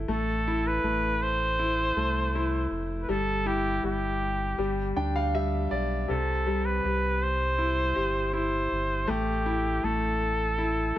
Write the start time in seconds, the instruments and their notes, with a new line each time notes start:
Already playing: grand piano A3 E4
0.08 sub bass A1, grand piano A3, flugelhorn A4
0.48 grand piano E4
0.67 flugelhorn B4
0.83 sub bass A1, grand piano A3
1.23 flugelhorn C5
1.59 grand piano E4
1.96 sub bass C2, grand piano A3
2.35 grand piano E4
2.71 sub bass F1
3.01 flugelhorn B4
3.09 sub bass G1, grand piano G3, flugelhorn A4
3.46 grand piano E4, flugelhorn G4
3.83 sub bass G1, grand piano G3, flugelhorn G4
4.58 sub bass G1, grand piano G3
4.96 sub bass D2, grand piano D4 G5
5.16 grand piano F5
5.34 grand piano G3 E5
5.71 sub bass B1, grand piano D5
6.08 sub bass C2, grand piano C3, flugelhorn A4
6.46 grand piano G3
6.66 flugelhorn B4
6.85 sub bass C2, grand piano G4
7.23 flugelhorn C5
7.58 grand piano E4
7.95 sub bass G1, grand piano G4
8.33 grand piano E4, flugelhorn C5
8.72 sub bass G1
9.07 sub bass A1, grand piano A3, flugelhorn G4
9.46 grand piano E4
9.83 sub bass A1, grand piano A3, flugelhorn A4
10.58 grand piano E4